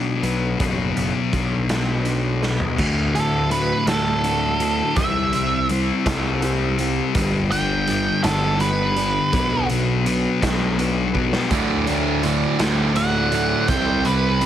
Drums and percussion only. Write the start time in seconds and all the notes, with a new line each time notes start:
0.23 closed hi-hat
0.60 kick, closed hi-hat
0.97 closed hi-hat
1.33 kick, closed hi-hat
1.69 snare, closed hi-hat
2.05 closed hi-hat
2.43 snare
2.60 floor tom
2.78 kick, crash
3.15 closed hi-hat
3.51 closed hi-hat
3.87 snare, closed hi-hat
4.24 closed hi-hat
4.60 closed hi-hat
4.96 kick, closed hi-hat
5.33 closed hi-hat
5.69 closed hi-hat
6.06 kick, snare, closed hi-hat
6.42 closed hi-hat
6.79 closed hi-hat
7.15 kick, closed hi-hat
7.52 closed hi-hat
7.87 closed hi-hat
8.24 snare, closed hi-hat
8.60 closed hi-hat
8.96 closed hi-hat
9.33 kick, closed hi-hat
9.70 closed hi-hat
10.06 closed hi-hat
10.42 kick, snare, closed hi-hat
10.79 closed hi-hat
11.15 kick
11.33 snare
11.51 kick, closed hi-hat
11.87 closed hi-hat
12.23 closed hi-hat
12.59 snare, closed hi-hat
12.96 closed hi-hat
13.32 closed hi-hat
13.68 kick, closed hi-hat
14.05 closed hi-hat
14.41 closed hi-hat